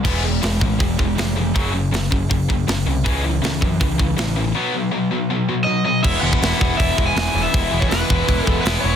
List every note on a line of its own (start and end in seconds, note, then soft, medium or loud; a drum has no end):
0.04 0.38 E1 medium
0.04 0.22 E3 medium
0.04 0.22 G#3 medium
0.04 0.23 B3 medium
0.04 kick loud
0.04 open hi-hat medium
0.04 crash medium
0.23 0.40 E3 medium
0.23 0.40 G#3 medium
0.42 0.59 E1 medium
0.42 0.59 E3 medium
0.42 0.59 G#3 medium
0.42 snare loud
0.42 open hi-hat medium
0.61 0.78 A1 medium
0.61 0.78 E3 medium
0.61 0.78 G#3 medium
0.61 kick medium
0.79 0.97 E1 medium
0.79 0.96 E3 medium
0.79 0.97 G#3 medium
0.79 kick medium
0.79 open hi-hat soft
0.99 1.16 E1 medium
0.99 1.15 E3 medium
0.99 1.16 G#3 medium
0.99 kick medium
1.18 1.51 F1 medium
1.18 1.35 E3 medium
1.18 1.35 G#3 medium
1.18 snare loud
1.18 open hi-hat medium
1.36 1.53 E3 medium
1.36 1.53 G#3 medium
1.55 1.72 F#2 medium
1.55 1.72 C#3 medium
1.55 1.73 F#3 medium
1.55 kick loud
1.55 open hi-hat soft
1.73 1.90 F#2 medium
1.73 1.90 C#3 medium
1.92 2.09 F#1 medium
1.92 2.09 F#2 medium
1.92 2.10 C#3 medium
1.92 snare loud
1.92 open hi-hat medium
2.11 2.29 F#1 medium
2.11 2.28 F#2 medium
2.11 2.28 C#3 medium
2.11 kick medium
2.30 2.64 F#1 medium
2.30 2.47 F#2 medium
2.30 2.47 C#3 medium
2.30 kick medium
2.30 open hi-hat soft
2.49 2.66 F#2 medium
2.49 2.66 C#3 medium
2.49 kick medium
2.68 2.85 F#1 medium
2.68 2.85 F#2 medium
2.68 2.85 C#3 medium
2.68 snare loud
2.68 open hi-hat medium
2.86 3.03 C2 loud
2.86 3.03 F#2 medium
2.86 3.03 C#3 medium
3.04 3.39 C#2 medium
3.04 3.22 C#3 medium
3.04 3.23 E3 medium
3.04 3.23 G#3 medium
3.04 kick loud
3.04 open hi-hat medium
3.23 3.41 C#3 medium
3.23 3.41 E3 medium
3.42 3.60 C#2 medium
3.42 3.59 C#3 medium
3.42 3.59 E3 medium
3.42 snare loud
3.42 open hi-hat medium
3.61 3.79 F#2 medium
3.61 3.78 C#3 medium
3.61 3.78 E3 loud
3.61 kick medium
3.80 3.97 C#2 medium
3.80 3.97 C#3 medium
3.80 3.97 E3 medium
3.80 kick loud
3.80 open hi-hat medium
3.98 4.16 C#2 medium
3.98 4.16 C#3 medium
3.98 4.16 E3 medium
3.98 kick medium
4.17 4.51 A1 medium
4.17 4.34 C#3 medium
4.17 4.34 E3 medium
4.17 snare loud
4.17 open hi-hat medium
4.36 4.53 C#3 medium
4.36 4.53 E3 medium
4.55 4.73 B2 medium
4.55 4.73 F#3 medium
4.55 4.73 B3 medium
4.74 4.90 B2 medium
4.74 4.91 F#3 medium
4.91 5.09 B2 medium
4.91 5.09 F#3 medium
5.11 5.28 B2 medium
5.11 5.28 F#3 medium
5.30 5.47 B2 medium
5.30 5.47 F#3 medium
5.49 5.65 B2 medium
5.49 5.65 F#3 medium
5.64 5.84 B2 medium
5.64 5.84 F#3 medium
5.64 5.84 D#5 medium
5.85 6.02 B2 medium
5.85 6.03 F#3 medium
5.85 6.03 D#5 medium
6.03 6.16 E1 loud
6.03 6.21 E2 loud
6.03 6.21 B2 loud
6.03 6.22 E3 medium
6.03 6.23 E3 loud
6.03 6.23 G#3 loud
6.03 6.23 B3 medium
6.03 6.24 E4 loud
6.03 6.21 E5 loud
6.03 kick loud
6.03 crash loud
6.21 6.34 E1 medium
6.21 6.40 E2 medium
6.21 6.40 B2 medium
6.21 6.40 E3 medium
6.21 6.42 E3 loud
6.21 6.41 G#3 medium
6.21 6.42 B3 medium
6.21 6.42 E4 medium
6.21 6.74 F#5 loud
6.33 kick medium
6.40 6.52 E1 medium
6.40 6.59 E2 medium
6.40 6.59 B2 medium
6.40 6.59 E3 medium
6.40 6.60 E3 medium
6.40 6.60 G#3 medium
6.40 6.60 B3 loud
6.40 6.61 E4 loud
6.40 snare loud
6.40 open hi-hat medium
6.59 6.72 E1 medium
6.59 6.76 E2 medium
6.59 6.77 B2 medium
6.59 6.77 E3 medium
6.59 6.79 E3 medium
6.59 6.77 G#3 medium
6.59 6.78 B3 loud
6.59 6.79 E4 loud
6.59 kick medium
6.77 6.91 E1 medium
6.77 6.95 E2 medium
6.77 6.96 B2 loud
6.77 6.96 E3 loud
6.77 6.97 E3 loud
6.77 6.96 G#3 loud
6.77 6.96 B3 medium
6.77 6.98 E4 loud
6.77 7.06 E5 medium
6.77 kick loud
6.77 open hi-hat medium
6.96 7.09 E1 medium
6.96 7.13 E2 medium
6.96 7.15 B2 medium
6.96 7.15 E3 medium
6.96 7.16 E3 loud
6.96 7.15 G#3 medium
6.96 7.15 B3 medium
6.96 7.17 E4 medium
6.96 kick medium
7.06 7.15 G#5 medium
7.15 7.28 E1 loud
7.15 7.32 E2 medium
7.15 7.33 B2 loud
7.15 7.33 E3 medium
7.15 7.34 E3 medium
7.15 7.34 G#3 medium
7.15 7.34 B3 loud
7.15 7.36 E4 medium
7.15 7.42 G#5 loud
7.15 snare loud
7.15 open hi-hat medium
7.34 7.46 E1 loud
7.34 7.51 E2 medium
7.34 7.52 B2 medium
7.34 7.52 E3 medium
7.34 7.54 E3 medium
7.34 7.52 G#3 medium
7.34 7.53 B3 medium
7.34 7.54 E4 medium
7.43 7.82 E5 loud
7.52 7.65 E1 loud
7.52 7.70 E2 loud
7.52 7.71 B2 loud
7.52 7.72 E3 medium
7.52 7.72 E3 loud
7.52 7.72 G#3 loud
7.52 7.73 B3 loud
7.52 7.74 E4 loud
7.52 kick loud
7.52 open hi-hat medium
7.71 7.84 E1 medium
7.71 7.88 E2 medium
7.71 7.89 B2 loud
7.71 7.89 E3 medium
7.71 7.90 E3 loud
7.71 7.89 G#3 medium
7.71 7.90 B3 medium
7.71 7.92 E4 medium
7.80 7.89 C#5 medium
7.80 kick medium
7.89 8.02 E1 medium
7.89 8.08 E2 medium
7.89 8.09 B2 loud
7.89 8.09 E3 loud
7.89 8.10 E3 loud
7.89 8.08 G#3 loud
7.89 8.09 B3 loud
7.89 8.10 E4 medium
7.89 8.46 B4 loud
7.89 snare loud
7.89 open hi-hat medium
8.09 8.22 E1 medium
8.09 8.25 E2 medium
8.09 8.26 B2 medium
8.09 8.27 E3 medium
8.09 8.28 E3 medium
8.09 8.27 G#3 loud
8.09 8.28 B3 loud
8.09 8.29 E4 loud
8.09 kick loud
8.27 8.40 E1 medium
8.27 8.45 E2 loud
8.27 8.46 B2 loud
8.27 8.46 E3 medium
8.27 8.48 E3 loud
8.27 8.46 G#3 loud
8.27 8.46 B3 loud
8.27 8.48 E4 loud
8.27 kick loud
8.27 open hi-hat medium
8.46 8.59 E1 medium
8.46 8.64 E2 medium
8.46 8.65 B2 loud
8.46 8.65 E3 medium
8.46 8.66 E3 loud
8.46 8.64 G#3 medium
8.46 8.65 B3 loud
8.46 8.66 E4 medium
8.46 8.61 A4 loud
8.46 kick loud
8.62 8.76 E1 medium
8.62 8.82 E2 medium
8.62 8.83 E3 medium
8.62 8.83 G#3 medium
8.62 8.80 B4 loud
8.62 open hi-hat medium
8.66 8.83 B2 medium
8.66 8.84 E3 loud
8.66 8.84 B3 loud
8.66 8.85 E4 loud
8.66 snare loud
8.80 8.95 E1 medium
8.80 8.96 E2 medium
8.80 8.96 B2 medium
8.80 8.96 E3 medium
8.80 8.96 G#3 medium
8.80 8.96 C#5 medium
8.85 8.96 E3 medium
8.85 8.96 B3 medium
8.85 8.96 E4 medium